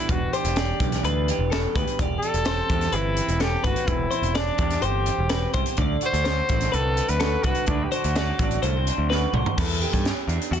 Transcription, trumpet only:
0, 0, Header, 1, 2, 480
1, 0, Start_track
1, 0, Key_signature, 1, "minor"
1, 0, Tempo, 474684
1, 84, Time_signature, 4, 2, 24, 8
1, 10719, End_track
2, 0, Start_track
2, 0, Title_t, "Trumpet"
2, 0, Program_c, 0, 56
2, 0, Note_on_c, 0, 64, 79
2, 112, Note_on_c, 0, 66, 77
2, 128, Note_off_c, 0, 64, 0
2, 335, Note_on_c, 0, 67, 90
2, 350, Note_off_c, 0, 66, 0
2, 1050, Note_off_c, 0, 67, 0
2, 2222, Note_on_c, 0, 69, 108
2, 2981, Note_on_c, 0, 64, 101
2, 2996, Note_off_c, 0, 69, 0
2, 3460, Note_on_c, 0, 67, 96
2, 3475, Note_off_c, 0, 64, 0
2, 3690, Note_off_c, 0, 67, 0
2, 3696, Note_on_c, 0, 66, 85
2, 3917, Note_on_c, 0, 64, 81
2, 3932, Note_off_c, 0, 66, 0
2, 4417, Note_on_c, 0, 62, 94
2, 4432, Note_off_c, 0, 64, 0
2, 4890, Note_on_c, 0, 67, 84
2, 4906, Note_off_c, 0, 62, 0
2, 5607, Note_off_c, 0, 67, 0
2, 6124, Note_on_c, 0, 72, 120
2, 6816, Note_on_c, 0, 69, 102
2, 6831, Note_off_c, 0, 72, 0
2, 7172, Note_on_c, 0, 71, 94
2, 7187, Note_off_c, 0, 69, 0
2, 7520, Note_on_c, 0, 66, 88
2, 7535, Note_off_c, 0, 71, 0
2, 7757, Note_off_c, 0, 66, 0
2, 7763, Note_on_c, 0, 62, 80
2, 7922, Note_on_c, 0, 67, 59
2, 7937, Note_off_c, 0, 62, 0
2, 8001, Note_on_c, 0, 66, 92
2, 8016, Note_off_c, 0, 67, 0
2, 8723, Note_off_c, 0, 66, 0
2, 10719, End_track
0, 0, End_of_file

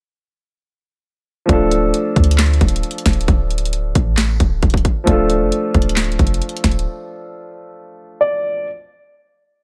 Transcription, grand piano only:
0, 0, Header, 1, 2, 480
1, 0, Start_track
1, 0, Key_signature, -1, "minor"
1, 0, Tempo, 447761
1, 1598, Time_signature, 4, 2, 24, 8
1, 10329, End_track
2, 0, Start_track
2, 0, Title_t, "Grand piano"
2, 0, Program_c, 0, 0
2, 1560, Note_on_c, 0, 53, 82
2, 1579, Note_on_c, 0, 57, 70
2, 1598, Note_on_c, 0, 62, 83
2, 1618, Note_on_c, 0, 65, 77
2, 1637, Note_on_c, 0, 69, 90
2, 1778, Control_c, 0, 64, 127
2, 5376, Note_off_c, 0, 53, 0
2, 5386, Note_off_c, 0, 57, 0
2, 5395, Note_off_c, 0, 62, 0
2, 5401, Note_on_c, 0, 53, 83
2, 5405, Note_off_c, 0, 65, 0
2, 5415, Note_off_c, 0, 69, 0
2, 5420, Note_on_c, 0, 57, 75
2, 5439, Note_on_c, 0, 62, 71
2, 5452, Control_c, 0, 64, 0
2, 5458, Note_on_c, 0, 65, 78
2, 5477, Note_on_c, 0, 69, 90
2, 5646, Control_c, 0, 64, 127
2, 8798, Note_on_c, 0, 74, 78
2, 9217, Note_off_c, 0, 53, 0
2, 9226, Note_off_c, 0, 57, 0
2, 9236, Note_off_c, 0, 62, 0
2, 9244, Note_off_c, 0, 74, 0
2, 9245, Note_off_c, 0, 65, 0
2, 9255, Note_off_c, 0, 69, 0
2, 9292, Control_c, 0, 64, 0
2, 10329, End_track
0, 0, End_of_file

